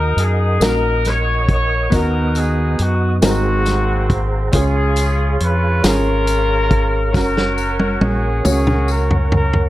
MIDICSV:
0, 0, Header, 1, 6, 480
1, 0, Start_track
1, 0, Key_signature, 6, "major"
1, 0, Tempo, 869565
1, 1060, Time_signature, 6, 3, 24, 8
1, 5349, End_track
2, 0, Start_track
2, 0, Title_t, "Tonewheel organ"
2, 0, Program_c, 0, 16
2, 0, Note_on_c, 0, 70, 65
2, 0, Note_on_c, 0, 75, 62
2, 0, Note_on_c, 0, 78, 60
2, 0, Note_on_c, 0, 87, 73
2, 1041, Note_off_c, 0, 70, 0
2, 1060, Note_on_c, 0, 59, 67
2, 1763, Note_off_c, 0, 87, 0
2, 1764, Note_off_c, 0, 75, 0
2, 1773, Note_off_c, 0, 59, 0
2, 1783, Note_on_c, 0, 82, 72
2, 1786, Note_on_c, 0, 72, 65
2, 1787, Note_on_c, 0, 68, 69
2, 2481, Note_off_c, 0, 78, 0
2, 2494, Note_off_c, 0, 82, 0
2, 2496, Note_off_c, 0, 72, 0
2, 2504, Note_on_c, 0, 77, 64
2, 2504, Note_on_c, 0, 85, 73
2, 2506, Note_on_c, 0, 73, 66
2, 3922, Note_off_c, 0, 68, 0
2, 3928, Note_off_c, 0, 77, 0
2, 3934, Note_on_c, 0, 78, 64
2, 3938, Note_on_c, 0, 70, 67
2, 5349, Note_off_c, 0, 70, 0
2, 5349, Note_off_c, 0, 73, 0
2, 5349, Note_off_c, 0, 78, 0
2, 5349, Note_off_c, 0, 85, 0
2, 5349, End_track
3, 0, Start_track
3, 0, Title_t, "Horn section"
3, 0, Program_c, 1, 61
3, 0, Note_on_c, 1, 63, 70
3, 0, Note_on_c, 1, 70, 91
3, 111, Note_off_c, 1, 70, 0
3, 114, Note_on_c, 1, 68, 85
3, 323, Note_off_c, 1, 63, 0
3, 347, Note_off_c, 1, 68, 0
3, 350, Note_on_c, 1, 70, 94
3, 585, Note_off_c, 1, 70, 0
3, 595, Note_on_c, 1, 73, 97
3, 828, Note_off_c, 1, 73, 0
3, 837, Note_on_c, 1, 73, 91
3, 1053, Note_off_c, 1, 73, 0
3, 1072, Note_on_c, 1, 63, 68
3, 1072, Note_on_c, 1, 66, 71
3, 1075, Note_on_c, 1, 70, 92
3, 1308, Note_off_c, 1, 70, 0
3, 1318, Note_on_c, 1, 68, 87
3, 1549, Note_off_c, 1, 68, 0
3, 1550, Note_off_c, 1, 66, 0
3, 1557, Note_on_c, 1, 66, 82
3, 1698, Note_off_c, 1, 63, 0
3, 1723, Note_off_c, 1, 66, 0
3, 1792, Note_on_c, 1, 60, 67
3, 1793, Note_on_c, 1, 58, 69
3, 1794, Note_on_c, 1, 66, 92
3, 2305, Note_off_c, 1, 66, 0
3, 2484, Note_off_c, 1, 60, 0
3, 2485, Note_off_c, 1, 58, 0
3, 2518, Note_on_c, 1, 65, 69
3, 2519, Note_on_c, 1, 61, 66
3, 2519, Note_on_c, 1, 68, 87
3, 2968, Note_off_c, 1, 68, 0
3, 3000, Note_on_c, 1, 71, 87
3, 3207, Note_off_c, 1, 65, 0
3, 3208, Note_off_c, 1, 61, 0
3, 3229, Note_on_c, 1, 61, 71
3, 3230, Note_off_c, 1, 71, 0
3, 3231, Note_on_c, 1, 65, 75
3, 3234, Note_on_c, 1, 70, 100
3, 3923, Note_off_c, 1, 61, 0
3, 3924, Note_off_c, 1, 65, 0
3, 3947, Note_off_c, 1, 70, 0
3, 3953, Note_on_c, 1, 61, 67
3, 3955, Note_on_c, 1, 66, 71
3, 3955, Note_on_c, 1, 70, 88
3, 4406, Note_off_c, 1, 70, 0
3, 4439, Note_on_c, 1, 68, 81
3, 4645, Note_off_c, 1, 61, 0
3, 4646, Note_off_c, 1, 66, 0
3, 4670, Note_off_c, 1, 68, 0
3, 4678, Note_on_c, 1, 61, 57
3, 4680, Note_on_c, 1, 66, 76
3, 4682, Note_on_c, 1, 58, 58
3, 4690, Note_on_c, 1, 68, 79
3, 4900, Note_off_c, 1, 68, 0
3, 4926, Note_on_c, 1, 70, 85
3, 5153, Note_off_c, 1, 70, 0
3, 5161, Note_on_c, 1, 70, 82
3, 5210, Note_off_c, 1, 66, 0
3, 5349, Note_off_c, 1, 58, 0
3, 5349, Note_off_c, 1, 61, 0
3, 5349, Note_off_c, 1, 70, 0
3, 5349, End_track
4, 0, Start_track
4, 0, Title_t, "Grand piano"
4, 0, Program_c, 2, 0
4, 0, Control_c, 2, 64, 127
4, 0, Note_on_c, 2, 51, 63
4, 0, Note_on_c, 2, 58, 76
4, 0, Note_on_c, 2, 63, 68
4, 0, Note_on_c, 2, 66, 84
4, 56, Note_off_c, 2, 63, 0
4, 61, Note_off_c, 2, 66, 0
4, 319, Note_off_c, 2, 51, 0
4, 327, Note_off_c, 2, 58, 0
4, 327, Note_on_c, 2, 58, 63
4, 339, Note_on_c, 2, 63, 53
4, 350, Note_on_c, 2, 66, 69
4, 769, Note_off_c, 2, 58, 0
4, 775, Note_off_c, 2, 63, 0
4, 780, Note_off_c, 2, 66, 0
4, 1049, Note_on_c, 2, 59, 80
4, 1060, Note_on_c, 2, 63, 73
4, 1063, Note_on_c, 2, 51, 64
4, 1068, Control_c, 2, 64, 0
4, 1070, Note_on_c, 2, 66, 88
4, 1153, Control_c, 2, 64, 127
4, 1490, Note_off_c, 2, 59, 0
4, 1495, Note_off_c, 2, 63, 0
4, 1500, Note_off_c, 2, 66, 0
4, 1760, Note_off_c, 2, 51, 0
4, 1775, Note_on_c, 2, 56, 58
4, 1777, Note_on_c, 2, 60, 56
4, 1784, Note_on_c, 2, 44, 58
4, 1784, Note_on_c, 2, 63, 58
4, 1788, Control_c, 2, 64, 0
4, 1790, Note_on_c, 2, 66, 60
4, 1795, Note_on_c, 2, 70, 67
4, 1892, Control_c, 2, 64, 127
4, 2213, Note_off_c, 2, 56, 0
4, 2214, Note_off_c, 2, 60, 0
4, 2217, Note_off_c, 2, 63, 0
4, 2220, Note_off_c, 2, 66, 0
4, 2223, Note_off_c, 2, 70, 0
4, 2480, Note_off_c, 2, 44, 0
4, 2494, Note_on_c, 2, 61, 80
4, 2500, Note_on_c, 2, 65, 71
4, 2503, Note_on_c, 2, 49, 61
4, 2507, Control_c, 2, 64, 0
4, 2512, Note_on_c, 2, 68, 91
4, 2593, Control_c, 2, 64, 127
4, 2932, Note_off_c, 2, 61, 0
4, 2936, Note_off_c, 2, 65, 0
4, 2941, Note_off_c, 2, 68, 0
4, 3200, Note_off_c, 2, 49, 0
4, 3211, Note_on_c, 2, 61, 63
4, 3220, Note_on_c, 2, 65, 58
4, 3233, Note_on_c, 2, 68, 70
4, 3651, Note_off_c, 2, 61, 0
4, 3655, Note_off_c, 2, 65, 0
4, 3662, Note_off_c, 2, 68, 0
4, 3934, Note_on_c, 2, 61, 78
4, 3945, Note_on_c, 2, 66, 73
4, 3947, Control_c, 2, 64, 0
4, 3956, Note_on_c, 2, 70, 92
4, 4054, Control_c, 2, 64, 127
4, 4372, Note_off_c, 2, 61, 0
4, 4378, Note_off_c, 2, 66, 0
4, 4383, Note_off_c, 2, 70, 0
4, 4655, Note_on_c, 2, 61, 61
4, 4663, Note_on_c, 2, 66, 54
4, 4673, Note_on_c, 2, 73, 70
4, 5093, Note_off_c, 2, 61, 0
4, 5097, Note_off_c, 2, 66, 0
4, 5102, Note_off_c, 2, 73, 0
4, 5349, End_track
5, 0, Start_track
5, 0, Title_t, "Fingered electric bass"
5, 0, Program_c, 3, 33
5, 0, Note_on_c, 3, 39, 99
5, 77, Note_off_c, 3, 39, 0
5, 93, Note_on_c, 3, 42, 91
5, 317, Note_off_c, 3, 42, 0
5, 331, Note_on_c, 3, 34, 83
5, 1034, Note_off_c, 3, 34, 0
5, 1062, Note_on_c, 3, 39, 96
5, 1519, Note_off_c, 3, 39, 0
5, 1543, Note_on_c, 3, 42, 80
5, 1763, Note_off_c, 3, 42, 0
5, 1780, Note_on_c, 3, 32, 101
5, 2478, Note_off_c, 3, 32, 0
5, 2504, Note_on_c, 3, 37, 95
5, 2960, Note_off_c, 3, 37, 0
5, 2985, Note_on_c, 3, 41, 78
5, 3204, Note_off_c, 3, 41, 0
5, 3223, Note_on_c, 3, 32, 85
5, 3944, Note_off_c, 3, 32, 0
5, 3944, Note_on_c, 3, 30, 103
5, 4400, Note_off_c, 3, 30, 0
5, 4421, Note_on_c, 3, 34, 90
5, 4642, Note_off_c, 3, 34, 0
5, 4667, Note_on_c, 3, 37, 89
5, 5349, Note_off_c, 3, 37, 0
5, 5349, End_track
6, 0, Start_track
6, 0, Title_t, "Drums"
6, 98, Note_on_c, 9, 42, 56
6, 153, Note_off_c, 9, 42, 0
6, 337, Note_on_c, 9, 54, 90
6, 342, Note_on_c, 9, 42, 86
6, 344, Note_on_c, 9, 38, 102
6, 393, Note_off_c, 9, 54, 0
6, 397, Note_off_c, 9, 42, 0
6, 399, Note_off_c, 9, 38, 0
6, 578, Note_on_c, 9, 54, 52
6, 581, Note_on_c, 9, 42, 49
6, 587, Note_on_c, 9, 38, 30
6, 634, Note_off_c, 9, 54, 0
6, 636, Note_off_c, 9, 42, 0
6, 642, Note_off_c, 9, 38, 0
6, 820, Note_on_c, 9, 36, 90
6, 821, Note_on_c, 9, 42, 42
6, 875, Note_off_c, 9, 36, 0
6, 876, Note_off_c, 9, 42, 0
6, 1059, Note_on_c, 9, 54, 55
6, 1060, Note_on_c, 9, 42, 83
6, 1061, Note_on_c, 9, 36, 105
6, 1115, Note_off_c, 9, 42, 0
6, 1115, Note_off_c, 9, 54, 0
6, 1116, Note_off_c, 9, 36, 0
6, 1298, Note_on_c, 9, 54, 54
6, 1301, Note_on_c, 9, 42, 57
6, 1353, Note_off_c, 9, 54, 0
6, 1356, Note_off_c, 9, 42, 0
6, 1538, Note_on_c, 9, 42, 59
6, 1594, Note_off_c, 9, 42, 0
6, 1778, Note_on_c, 9, 54, 87
6, 1779, Note_on_c, 9, 42, 96
6, 1781, Note_on_c, 9, 38, 114
6, 1834, Note_off_c, 9, 54, 0
6, 1835, Note_off_c, 9, 42, 0
6, 1836, Note_off_c, 9, 38, 0
6, 2018, Note_on_c, 9, 54, 53
6, 2021, Note_on_c, 9, 42, 50
6, 2027, Note_on_c, 9, 38, 30
6, 2074, Note_off_c, 9, 54, 0
6, 2076, Note_off_c, 9, 42, 0
6, 2082, Note_off_c, 9, 38, 0
6, 2262, Note_on_c, 9, 36, 85
6, 2263, Note_on_c, 9, 42, 41
6, 2318, Note_off_c, 9, 36, 0
6, 2318, Note_off_c, 9, 42, 0
6, 2498, Note_on_c, 9, 54, 59
6, 2500, Note_on_c, 9, 42, 93
6, 2502, Note_on_c, 9, 36, 114
6, 2554, Note_off_c, 9, 54, 0
6, 2555, Note_off_c, 9, 42, 0
6, 2557, Note_off_c, 9, 36, 0
6, 2738, Note_on_c, 9, 54, 55
6, 2741, Note_on_c, 9, 42, 58
6, 2793, Note_off_c, 9, 54, 0
6, 2796, Note_off_c, 9, 42, 0
6, 2983, Note_on_c, 9, 42, 57
6, 3038, Note_off_c, 9, 42, 0
6, 3222, Note_on_c, 9, 42, 88
6, 3223, Note_on_c, 9, 54, 89
6, 3224, Note_on_c, 9, 38, 103
6, 3278, Note_off_c, 9, 42, 0
6, 3278, Note_off_c, 9, 54, 0
6, 3279, Note_off_c, 9, 38, 0
6, 3462, Note_on_c, 9, 42, 47
6, 3463, Note_on_c, 9, 54, 51
6, 3517, Note_off_c, 9, 42, 0
6, 3518, Note_off_c, 9, 54, 0
6, 3702, Note_on_c, 9, 42, 43
6, 3703, Note_on_c, 9, 36, 89
6, 3757, Note_off_c, 9, 42, 0
6, 3758, Note_off_c, 9, 36, 0
6, 3943, Note_on_c, 9, 36, 107
6, 3947, Note_on_c, 9, 54, 55
6, 3949, Note_on_c, 9, 38, 57
6, 3999, Note_off_c, 9, 36, 0
6, 4002, Note_off_c, 9, 54, 0
6, 4004, Note_off_c, 9, 38, 0
6, 4070, Note_on_c, 9, 38, 55
6, 4125, Note_off_c, 9, 38, 0
6, 4183, Note_on_c, 9, 54, 58
6, 4238, Note_off_c, 9, 54, 0
6, 4303, Note_on_c, 9, 48, 58
6, 4358, Note_off_c, 9, 48, 0
6, 4423, Note_on_c, 9, 48, 77
6, 4478, Note_off_c, 9, 48, 0
6, 4664, Note_on_c, 9, 47, 78
6, 4666, Note_on_c, 9, 54, 93
6, 4719, Note_off_c, 9, 47, 0
6, 4721, Note_off_c, 9, 54, 0
6, 4786, Note_on_c, 9, 45, 68
6, 4841, Note_off_c, 9, 45, 0
6, 4902, Note_on_c, 9, 54, 52
6, 4957, Note_off_c, 9, 54, 0
6, 5027, Note_on_c, 9, 43, 78
6, 5082, Note_off_c, 9, 43, 0
6, 5145, Note_on_c, 9, 43, 99
6, 5200, Note_off_c, 9, 43, 0
6, 5263, Note_on_c, 9, 43, 81
6, 5318, Note_off_c, 9, 43, 0
6, 5349, End_track
0, 0, End_of_file